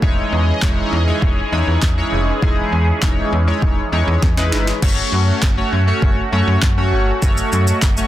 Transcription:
0.02 0.22 E1 loud
0.02 4.78 E3 medium
0.02 0.47 G#3 medium
0.02 4.78 C#4 medium
0.02 0.47 D#4 medium
0.02 0.47 E4 medium
0.02 4.78 G#4 medium
0.02 0.47 C#5 loud
0.02 2.40 D#5 medium
0.02 kick loud
0.32 0.52 E2 loud
0.62 0.82 E1 loud
0.62 0.96 G#3 medium
0.62 0.96 D#4 medium
0.62 0.96 E4 medium
0.62 0.96 C#5 loud
0.62 kick loud
0.62 snare medium
0.62 clap loud
0.92 1.12 E2 loud
1.07 1.41 G#3 medium
1.07 1.41 D#4 medium
1.07 1.41 E4 medium
1.07 1.41 C#5 loud
1.22 1.42 E1 loud
1.22 kick medium
1.52 1.62 E2 loud
1.52 1.86 G#3 medium
1.52 1.86 D#4 medium
1.52 1.86 E4 medium
1.52 1.86 C#5 loud
1.67 1.77 E2 medium
1.82 2.02 E2 medium
1.82 kick loud
1.82 snare loud
1.82 clap loud
1.97 2.31 G#3 medium
1.97 2.31 D#4 medium
1.97 2.31 E4 medium
1.97 2.31 C#5 loud
2.12 2.32 F1 medium
2.42 2.62 E1 loud
2.42 2.87 G#3 medium
2.42 2.87 D#4 medium
2.42 2.87 E4 medium
2.42 2.87 G#4 loud
2.42 kick loud
2.72 2.92 E2 medium
3.02 3.22 E1 loud
3.02 3.36 G#3 medium
3.02 3.36 D#4 medium
3.02 3.36 E4 medium
3.02 3.36 C#5 loud
3.02 kick loud
3.02 snare medium
3.02 clap loud
3.32 3.52 E2 loud
3.47 3.81 G#3 medium
3.47 3.81 D#4 medium
3.47 3.81 E4 medium
3.47 3.81 C#5 loud
3.62 3.82 E1 medium
3.62 kick loud
3.92 4.02 E2 loud
3.92 4.26 G#3 medium
3.92 4.26 D#4 medium
3.92 4.26 E4 medium
3.92 4.26 C#5 loud
4.07 4.17 E2 loud
4.22 4.54 E2 loud
4.22 kick loud
4.22 snare medium
4.37 4.71 G#3 medium
4.37 4.71 D#4 medium
4.37 4.71 E4 medium
4.37 4.71 B4 medium
4.37 snare medium
4.52 4.72 G1 medium
4.52 snare medium
4.67 snare medium
4.82 5.02 F#1 loud
4.82 5.38 A3 medium
4.82 8.07 A3 medium
4.82 5.38 C#4 medium
4.82 7.20 C#4 medium
4.82 8.07 F#4 medium
4.82 5.38 F#4 medium
4.82 5.38 C#5 medium
4.82 kick loud
4.82 crash medium
5.12 5.32 F#2 loud
5.42 5.62 F#1 loud
5.42 kick loud
5.42 snare medium
5.42 clap loud
5.57 5.79 A3 medium
5.57 5.80 C#4 medium
5.57 5.80 F#4 medium
5.57 5.80 C#5 medium
5.72 5.92 F#2 medium
5.87 6.21 A3 medium
5.87 6.21 C#4 medium
5.87 6.21 F#4 medium
5.87 6.21 C#5 loud
6.02 6.22 F#1 loud
6.02 kick medium
6.32 6.42 F#2 loud
6.32 6.66 A3 medium
6.32 6.66 C#4 medium
6.32 6.66 F#4 medium
6.32 6.66 C#5 medium
6.47 6.57 F#2 loud
6.62 6.94 F#2 loud
6.62 kick loud
6.62 snare medium
6.62 clap loud
6.77 7.11 A3 medium
6.77 7.11 C#4 medium
6.77 7.11 F#4 medium
6.77 7.11 C#5 medium
6.92 7.12 G1 loud
7.22 7.42 F#1 loud
7.22 7.78 A3 medium
7.22 7.78 C#4 medium
7.22 7.78 F#4 medium
7.22 7.78 C#5 medium
7.22 8.07 D#5 medium
7.22 kick loud
7.22 shaker medium
7.37 shaker medium
7.52 7.72 F#2 loud
7.52 shaker medium
7.67 shaker medium
7.82 8.02 F#1 loud
7.82 kick loud
7.82 snare medium
7.82 clap loud
7.82 shaker medium
7.97 8.07 A3 medium
7.97 8.07 C#4 medium
7.97 8.07 F#4 medium
7.97 8.07 C#5 medium
7.97 shaker medium

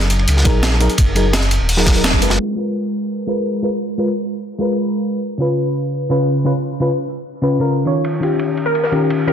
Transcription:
0.00 0.26 F#1 loud
0.00 0.42 F#3 medium
0.00 0.43 D#4 medium
0.00 0.44 G#4 medium
0.00 0.44 A#4 medium
0.00 closed hi-hat soft
0.10 closed hi-hat medium
0.10 ride medium
0.19 ride soft
0.28 0.44 C#2 medium
0.28 closed hi-hat medium
0.28 ride medium
0.37 snare soft
0.44 0.88 A#1 loud
0.44 0.78 F#3 medium
0.44 0.78 D#4 medium
0.44 0.79 G#4 medium
0.44 0.79 A#4 loud
0.44 kick loud
0.44 closed hi-hat medium
0.44 ride medium
0.63 snare loud
0.63 closed hi-hat medium
0.63 ride medium
0.80 0.87 F#3 medium
0.80 0.87 D#4 medium
0.80 0.88 G#4 medium
0.80 0.88 A#4 loud
0.80 closed hi-hat medium
0.80 ride medium
0.90 closed hi-hat soft
0.98 1.59 F#1 loud
0.98 kick loud
0.98 closed hi-hat medium
0.98 ride medium
1.15 1.26 F#3 medium
1.15 1.27 D#4 medium
1.15 1.27 G#4 medium
1.15 1.27 A#4 medium
1.15 closed hi-hat medium
1.15 ride medium
1.33 snare loud
1.33 closed hi-hat medium
1.33 ride medium
1.43 closed hi-hat soft
1.51 closed hi-hat medium
1.51 ride medium
1.60 2.21 D#1 medium
1.69 closed hi-hat medium
1.69 open hi-hat medium
1.77 1.93 F#3 medium
1.77 1.94 D#4 medium
1.77 1.94 G#4 medium
1.77 1.94 A#4 medium
1.77 snare medium
1.86 kick medium
1.86 snare loud
1.86 closed hi-hat medium
1.86 ride medium
1.95 2.19 F#3 medium
1.95 2.20 D#4 medium
1.95 2.20 G#4 medium
1.95 2.20 A#4 medium
1.95 closed hi-hat soft
2.04 snare loud
2.04 closed hi-hat medium
2.04 ride medium
2.13 kick medium
2.21 2.38 F#1 medium
2.21 2.54 G#3 medium
2.21 2.55 F4 medium
2.21 2.55 A#4 medium
2.21 2.56 B4 medium
2.21 closed hi-hat medium
2.21 ride medium
2.30 snare loud
2.30 closed hi-hat soft
2.30 ride medium
2.55 3.25 G#3 medium
2.55 3.25 F4 medium
2.55 3.26 A#4 medium
2.55 3.27 B4 medium
3.27 3.61 G#3 medium
3.27 3.61 F4 medium
3.27 3.61 A#4 medium
3.27 3.61 B4 medium
3.62 3.69 G#3 medium
3.62 3.70 F4 medium
3.62 3.70 A#4 medium
3.62 3.70 B4 medium
3.98 4.09 G#3 medium
3.98 4.09 F4 medium
3.98 4.09 A#4 medium
3.98 4.10 B4 medium
4.58 5.20 G#3 medium
4.58 5.21 F4 medium
4.58 5.21 A#4 medium
4.58 5.22 B4 medium
5.38 6.07 C#3 medium
5.38 6.08 C#4 medium
5.38 6.08 F4 medium
5.38 6.09 B4 medium
6.09 6.43 C#3 medium
6.09 6.43 C#4 medium
6.09 6.44 F4 medium
6.09 6.44 B4 medium
6.44 6.52 C#3 medium
6.44 6.52 C#4 medium
6.44 6.52 F4 medium
6.44 6.53 B4 medium
6.80 6.91 C#3 medium
6.80 6.91 C#4 medium
6.80 6.92 F4 medium
6.80 6.92 B4 medium
7.42 7.58 C#3 medium
7.42 7.58 C#4 medium
7.42 7.59 F4 medium
7.42 7.59 B4 medium
7.59 7.84 C#3 medium
7.59 7.84 C#4 medium
7.59 7.85 F4 medium
7.59 7.85 A#4 medium
7.85 8.19 D#3 medium
7.85 8.20 C#4 medium
7.85 8.20 F4 medium
7.85 8.20 C#5 medium
8.04 ride medium
8.20 8.89 D#3 medium
8.20 8.90 C#4 medium
8.20 8.91 F4 medium
8.20 8.91 G4 medium
8.20 ride medium
8.39 ride medium
8.57 ride medium
8.66 8.82 A#4 medium
8.66 ride soft
8.75 ride medium
8.84 9.05 A#4 medium
8.84 snare soft
8.91 9.25 D#3 medium
8.91 9.26 C#4 medium
8.91 9.26 F4 medium
8.91 9.26 G4 medium
8.91 ride medium
9.10 ride medium
9.27 9.33 D#3 medium
9.27 9.33 C#4 medium
9.27 9.33 F4 medium
9.27 9.33 G4 medium
9.27 9.33 A#4 medium
9.27 ride medium

